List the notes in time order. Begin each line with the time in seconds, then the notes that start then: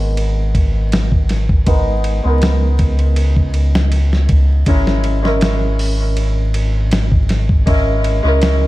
Already playing: G#1 G#3 B3 D#4 A#4
0.17 ride
0.55 kick, ride
0.92 snare, ride
1.12 kick
1.29 snare, ride
1.49 kick
1.66 G#1 G#3 B3 D#4 A#4, kick, ride
2.04 ride
2.23 C#2 G#3 B3 D#4
2.28 A#4
2.42 snare, ride
2.79 kick, ride
2.99 ride
3.16 ride
3.37 kick
3.54 ride
3.75 snare
3.92 ride
4.13 snare
4.29 kick, ride
4.66 G#1 G#3 C#4 E4 A#4, kick, ride
4.87 snare
5.04 ride
5.23 G#3 C#4 E4, snare
5.27 A#4
5.41 snare, ride
5.79 open hi-hat
6.17 ride
6.54 ride
6.92 snare, ride
7.12 kick
7.29 snare, ride
7.49 kick
7.66 G#1 G#3 C#4 E4 A#4, kick, ride
8.04 ride
8.23 C#2 G#3 C#4 E4
8.27 A#4
8.42 snare, ride